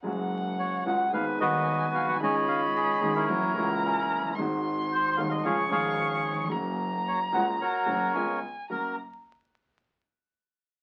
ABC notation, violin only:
X:1
M:4/4
L:1/8
Q:1/4=111
K:F#
V:1 name="Violin"
f4 g4 | b4 a4 | ^b4 c'4 | a6 g2 |
a z6 z |]